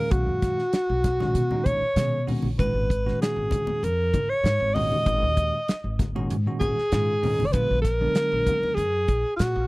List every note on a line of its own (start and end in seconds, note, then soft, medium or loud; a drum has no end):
0.00 0.61 A#2 medium
0.00 0.61 D#3 medium
0.00 0.61 G#3 medium
0.00 0.62 C#4 medium
0.00 0.13 A#4 medium
0.00 0.62 F5 medium
0.11 0.28 B1 loud
0.11 1.67 F#4 medium
0.11 kick medium
0.11 closed hi-hat medium
0.26 0.54 F#2 medium
0.42 kick medium
0.42 snare soft
0.42 closed hi-hat medium
0.59 snare soft
0.73 muted upright bass stroke soft
0.73 snare loud
0.73 closed hi-hat medium
0.89 1.30 B1 medium
1.04 kick medium
1.04 snare soft
1.04 closed hi-hat medium
1.04 low conga medium
1.20 1.40 A#2 medium
1.20 1.40 D#3 medium
1.20 1.40 G#3 medium
1.20 1.40 C#4 medium
1.20 1.40 F#4 medium
1.20 snare soft
1.20 high conga medium
1.35 1.49 B2 medium
1.35 closed hi-hat medium
1.51 1.81 A#2 medium
1.51 1.82 D#3 medium
1.51 1.81 G#3 medium
1.51 1.82 C#4 medium
1.51 1.82 D#4 medium
1.51 low conga medium
1.65 1.80 B1 medium
1.65 2.28 C#5 loud
1.65 kick medium
1.65 closed hi-hat medium
1.65 high conga medium
1.81 muted upright bass stroke soft
1.96 2.17 A#2 medium
1.96 2.44 B2 medium
1.96 2.17 D#3 medium
1.96 2.17 G#3 medium
1.96 2.18 C#4 medium
1.96 2.18 G#4 medium
1.96 snare loud
1.96 closed hi-hat medium
2.27 2.48 A#2 medium
2.27 2.48 D#3 medium
2.27 2.48 G#3 medium
2.27 2.48 C#4 medium
2.27 2.48 F#4 medium
2.27 open hi-hat medium
2.27 low conga medium
2.42 2.56 A#1 medium
2.42 high conga medium
2.59 2.73 G#1 loud
2.59 2.89 A#2 medium
2.59 2.89 D#3 medium
2.59 2.89 G#3 medium
2.59 2.89 C#4 medium
2.59 2.89 F#4 medium
2.59 3.17 B4 medium
2.59 kick medium
2.59 closed hi-hat medium
2.73 3.14 G#1 medium
2.90 kick medium
2.90 closed hi-hat medium
3.06 3.86 A#2 medium
3.06 3.86 D#3 medium
3.06 3.86 G#3 medium
3.06 3.87 C#4 medium
3.06 3.86 F#4 medium
3.06 snare soft
3.20 3.85 G#4 medium
3.20 muted upright bass stroke soft
3.20 snare medium
3.20 closed hi-hat medium
3.36 3.50 G#1 medium
3.51 kick medium
3.51 closed hi-hat medium
3.51 high conga medium
3.51 low conga medium
3.67 muted upright bass stroke soft
3.67 high conga medium
3.83 4.10 F2 medium
3.83 4.31 A#4 medium
3.83 closed hi-hat medium
4.14 4.28 G#1 medium
4.14 kick medium
4.14 closed hi-hat soft
4.14 high conga medium
4.29 4.76 C#5 medium
4.44 4.58 G#2 medium
4.44 snare loud
4.44 closed hi-hat medium
4.60 4.87 G#1 medium
4.74 5.57 A#2 medium
4.74 5.56 D#3 medium
4.74 5.56 G#3 medium
4.74 5.57 C#4 medium
4.74 5.57 F#4 medium
4.74 5.99 D#5 loud
4.74 open hi-hat medium
4.74 low conga medium
4.92 high conga medium
5.06 5.24 G#1 loud
5.06 kick medium
5.06 closed hi-hat medium
5.22 5.49 D#2 medium
5.37 kick medium
5.37 closed hi-hat medium
5.68 muted upright bass stroke soft
5.68 snare medium
5.68 closed hi-hat medium
5.84 6.24 G#1 medium
5.99 kick medium
5.99 snare soft
5.99 closed hi-hat medium
5.99 high conga medium
5.99 low conga medium
6.15 6.35 A#2 medium
6.15 6.35 D#3 medium
6.15 6.36 G#3 medium
6.15 6.36 C#4 medium
6.15 6.35 F#4 medium
6.15 high conga medium
6.30 6.45 G#2 loud
6.30 closed hi-hat medium
6.47 6.77 A#2 medium
6.47 6.77 D#3 medium
6.47 6.77 G#3 medium
6.47 6.77 C#4 medium
6.47 6.77 F#4 medium
6.60 6.75 G#1 medium
6.60 7.48 G#4 loud
6.60 kick medium
6.60 closed hi-hat medium
6.60 high conga medium
6.77 muted upright bass stroke soft
6.77 snare soft
6.92 7.40 G#2 medium
6.92 7.13 A#2 medium
6.92 7.13 D#3 medium
6.92 7.13 G#3 medium
6.92 7.13 C#4 medium
6.92 7.13 F4 medium
6.92 snare loud
6.92 closed hi-hat medium
7.22 7.43 A#2 medium
7.22 7.44 D#3 medium
7.22 7.44 G#3 medium
7.22 7.44 C#4 medium
7.22 7.44 D#4 medium
7.22 open hi-hat medium
7.22 low conga medium
7.39 7.52 F#1 medium
7.39 high conga medium
7.46 7.54 D5 medium
7.52 7.68 A#1 loud
7.52 7.84 D3 medium
7.52 7.84 F#3 medium
7.52 7.84 G#3 medium
7.52 7.84 B3 medium
7.52 7.85 F4 medium
7.52 7.81 B4 loud
7.52 kick medium
7.52 closed hi-hat medium
7.71 8.11 A#1 medium
7.81 8.76 A#4 loud
7.81 kick medium
7.81 snare soft
7.81 closed hi-hat medium
8.00 8.81 D3 medium
8.00 8.81 F#3 medium
8.00 8.81 G#3 medium
8.00 8.82 B3 medium
8.00 8.82 D4 medium
8.15 muted upright bass stroke soft
8.15 snare loud
8.15 closed hi-hat medium
8.32 8.45 A#1 medium
8.47 kick medium
8.47 closed hi-hat medium
8.47 high conga medium
8.47 low conga medium
8.62 muted upright bass stroke soft
8.62 high conga medium
8.74 9.04 F#2 loud
8.74 9.36 G#4 medium
8.74 closed hi-hat medium
9.08 9.23 A#1 medium
9.08 kick medium
9.08 closed hi-hat soft
9.36 9.54 A#2 medium
9.36 9.67 F#4 medium
9.36 snare loud
9.36 closed hi-hat medium
9.56 9.67 A#1 medium